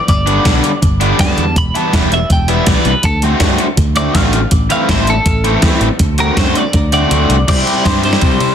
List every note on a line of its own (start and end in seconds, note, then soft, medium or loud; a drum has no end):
0.08 0.37 G1 loud
0.08 0.80 D5 loud
0.08 kick loud
0.08 closed hi-hat medium
0.26 0.43 D3 medium
0.26 0.44 G3 medium
0.26 0.44 B3 medium
0.26 0.44 D4 medium
0.26 closed hi-hat medium
0.45 0.60 B1 medium
0.45 0.69 D3 medium
0.45 0.69 G3 medium
0.45 0.69 B3 medium
0.45 0.69 D4 medium
0.45 kick medium
0.45 snare loud
0.45 closed hi-hat medium
0.64 closed hi-hat medium
0.82 1.12 G1 loud
0.82 kick loud
0.82 closed hi-hat loud
1.00 1.18 D3 medium
1.00 1.19 G3 medium
1.00 1.19 B3 medium
1.00 1.19 D4 loud
1.00 closed hi-hat medium
1.19 1.36 F#2 medium
1.19 1.43 D3 medium
1.19 1.44 G3 medium
1.19 1.44 B3 medium
1.19 1.44 D4 medium
1.19 1.56 A5 medium
1.19 kick loud
1.19 snare loud
1.19 closed hi-hat loud
1.37 1.54 E2 medium
1.37 closed hi-hat medium
1.56 1.71 E1 medium
1.56 1.76 B5 medium
1.56 kick loud
1.56 closed hi-hat medium
1.75 1.92 E3 medium
1.75 1.92 G3 medium
1.75 1.93 B3 medium
1.75 1.93 E4 medium
1.75 1.95 A5 medium
1.75 closed hi-hat medium
1.93 2.22 E1 medium
1.93 2.17 E3 medium
1.93 2.17 G3 medium
1.93 2.18 B3 medium
1.93 2.18 E4 medium
1.93 2.12 G5 medium
1.93 kick loud
1.93 snare medium
1.93 closed hi-hat medium
2.12 2.31 E5 medium
2.12 closed hi-hat medium
2.30 2.59 E1 medium
2.30 2.50 G5 medium
2.30 kick loud
2.30 closed hi-hat medium
2.48 2.66 E3 medium
2.48 2.66 G3 medium
2.48 2.67 B3 medium
2.48 2.67 E4 loud
2.48 2.68 E5 medium
2.48 closed hi-hat medium
2.67 2.74 B1 medium
2.67 2.91 E3 medium
2.67 2.92 G3 medium
2.67 2.92 B3 medium
2.67 2.92 E4 medium
2.67 2.86 D5 medium
2.67 kick loud
2.67 snare loud
2.67 closed hi-hat medium
2.85 2.93 C2 medium
2.85 3.04 B4 medium
2.85 closed hi-hat medium
3.03 3.33 D2 loud
3.03 3.23 A4 loud
3.03 kick loud
3.03 closed hi-hat medium
3.22 3.40 D3 medium
3.22 3.40 A3 medium
3.22 3.41 C4 medium
3.22 3.41 F#4 loud
3.22 closed hi-hat medium
3.40 3.55 G2 medium
3.40 3.65 D3 medium
3.40 3.65 A3 medium
3.40 3.66 C4 medium
3.40 3.66 F#4 medium
3.40 kick loud
3.40 snare loud
3.40 closed hi-hat medium
3.58 closed hi-hat medium
3.77 4.07 D2 loud
3.77 kick loud
3.77 closed hi-hat loud
3.96 4.13 D3 medium
3.96 4.14 A3 medium
3.96 4.14 C4 medium
3.96 4.15 F#4 medium
3.96 4.17 D5 loud
3.96 closed hi-hat medium
4.14 4.44 A1 medium
4.14 4.39 D3 medium
4.14 4.39 A3 medium
4.14 4.39 C4 medium
4.14 4.40 F#4 medium
4.14 4.52 F5 medium
4.14 kick loud
4.14 snare loud
4.14 closed hi-hat loud
4.33 closed hi-hat medium
4.51 4.66 A1 medium
4.51 kick loud
4.51 closed hi-hat medium
4.70 4.88 E3 medium
4.70 4.88 A3 medium
4.70 4.88 C4 medium
4.70 4.89 E4 medium
4.70 4.89 F5 medium
4.70 closed hi-hat medium
4.88 5.18 A1 medium
4.88 5.13 E3 medium
4.88 5.14 A3 medium
4.88 5.13 C4 medium
4.88 5.14 E4 medium
4.88 5.08 C5 medium
4.88 kick loud
4.88 snare loud
4.88 closed hi-hat medium
5.07 5.81 A4 loud
5.07 closed hi-hat medium
5.26 5.55 A1 medium
5.26 kick loud
5.26 closed hi-hat loud
5.44 5.61 E3 medium
5.44 5.62 A3 medium
5.44 5.62 C4 loud
5.44 5.63 E4 loud
5.44 closed hi-hat medium
5.62 5.70 E2 medium
5.62 5.87 E3 medium
5.62 5.87 A3 medium
5.62 5.88 C4 medium
5.62 5.88 E4 medium
5.62 kick loud
5.62 snare loud
5.62 closed hi-hat medium
5.80 5.88 A1 loud
5.80 closed hi-hat medium
5.99 6.29 D2 medium
5.99 kick loud
5.99 closed hi-hat medium
6.18 6.36 D3 medium
6.18 6.36 A3 medium
6.18 6.37 C4 medium
6.18 6.37 F#4 loud
6.18 6.38 A#4 medium
6.18 closed hi-hat medium
6.37 6.51 F#2 medium
6.37 6.61 D3 medium
6.37 6.62 A3 medium
6.37 6.62 C4 medium
6.37 6.62 F#4 medium
6.37 6.57 C5 medium
6.37 kick loud
6.37 snare loud
6.37 closed hi-hat medium
6.55 6.92 D5 medium
6.55 closed hi-hat medium
6.73 7.03 D2 loud
6.73 kick loud
6.73 closed hi-hat loud
6.92 7.10 D3 medium
6.92 7.10 A3 medium
6.92 7.10 C4 medium
6.92 7.11 F#4 loud
6.92 7.47 D5 loud
6.92 closed hi-hat medium
7.11 7.28 D2 medium
7.11 7.35 D3 medium
7.11 7.35 A3 medium
7.11 7.36 C4 medium
7.11 7.36 F#4 medium
7.11 closed hi-hat loud
7.29 7.46 C2 medium
7.29 closed hi-hat medium
7.48 7.63 C2 loud
7.48 7.84 C3 medium
7.48 7.85 G3 medium
7.48 7.85 C4 medium
7.48 7.86 E4 medium
7.48 7.87 G4 medium
7.48 7.86 D5 medium
7.48 kick loud
7.48 crash loud
7.48 ride loud
7.67 ride medium
7.85 8.15 G2 medium
7.85 8.55 C3 medium
7.85 8.55 G3 medium
7.85 8.06 C4 loud
7.85 8.05 E4 medium
7.85 8.03 G4 medium
7.85 8.03 C5 medium
7.85 kick loud
7.85 snare loud
7.85 ride medium
8.03 8.55 C4 medium
8.03 8.55 E4 medium
8.03 8.55 G4 medium
8.03 8.55 C5 medium
8.03 ride medium
8.13 snare medium
8.21 8.37 C2 loud
8.21 kick loud
8.21 ride loud
8.40 8.55 C3 loud
8.40 ride medium